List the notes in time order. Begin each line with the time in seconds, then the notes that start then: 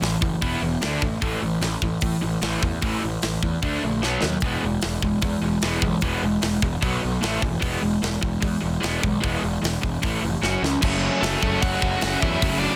0.02 A1 A2 E3, snare, open hi-hat
0.22 F#1 A2 E3, kick
0.42 E1 E3 B3 E4, kick, open hi-hat
0.62 E1 E3 B3
0.81 D2 D3 A3 D4, snare, open hi-hat
1.02 A1 D3 A3, kick
1.21 A1 A2 E3 A3, kick, open hi-hat
1.43 A1 A2 E3
1.61 A1 A2 E3, snare, open hi-hat
1.82 A1 A2 E3, kick
2.01 A2 E3, kick, open hi-hat
2.22 A1 A2 E3
2.42 A1 A2 E3 A3, snare, open hi-hat
2.63 E2 A2 E3, kick
2.82 A1 A2 E3 A3, kick, open hi-hat
3.03 A1 A2 E3
3.22 A1 A2 E3, snare, open hi-hat
3.43 E2 A2 E3, kick
3.63 D2 D3 A3 D4, kick, open hi-hat
3.83 A#1 D3 A3
4.03 B1 B2 F#3 B3, snare
4.22 D#2 B2 F#3, snare
4.40 E1 E3 G#3 B3, kick, open hi-hat
4.63 E1 E3 G#3
4.81 E1 E3 G#3, snare, open hi-hat
5.02 E1 E3 G#3, kick
5.21 E2 E3 G#3, kick, open hi-hat
5.42 E1 E3 G#3
5.62 E1 E3 G#3 B3, snare, open hi-hat
5.82 B1 E3 G#3, kick
6.01 E1 E3 G#3 B3, kick, open hi-hat
6.23 E1 E3 G#3
6.42 E1 E3 G#3, snare, open hi-hat
6.62 E1 E3 G#3, kick
6.82 B1 B2 F#3 B3, kick, open hi-hat
7.01 B1 B2 F#3
7.22 A1 A2 E3 A3, snare, open hi-hat
7.42 E1 A2 E3, kick
7.61 E1 E3 G#3 B3, kick, open hi-hat
7.81 E1 E3 G#3
8.02 E1 E3 G#3, snare, open hi-hat
8.22 E1 E3 G#3, kick
8.42 E2 E3 G#3, kick, open hi-hat
8.62 E1 E3 G#3
8.82 E1 E3 G#3 B3, snare, open hi-hat
9.02 B1 E3 G#3, kick
9.22 E1 E3 G#3 B3, kick, open hi-hat
9.43 E1 E3 G#3
9.63 E1 E3 G#3, snare, open hi-hat
9.83 E1 E3 G#3, kick
10.02 A1 A2 E3 A3, kick, open hi-hat
10.22 F1 A2 E3
10.41 F#1 F#3 C#4 F#4, snare
10.62 C#2 F#3 C#4, snare
10.81 F#1 F#2 C#3 F#3 A3 C#4, kick, crash
11.20 F#1 F#2 C#3 F#3 A3 C#4 A4, snare, open hi-hat
11.41 F#1 F#2 C#3 F#3 A3 C#4, kick
11.61 F#1 F#2 C#3 F#3 A3 C#4 F#4 F#5, kick, open hi-hat
11.82 F#1, kick
12.01 F#1 F#2 C#3 F#3 A3 C#4, snare, open hi-hat
12.20 E2 F#2 C#3 F#3 A3 C#4 E4 E5, kick
12.40 F#1 F#2 C#3 F#3 A3 C#4, kick, open hi-hat
12.59 D4 D5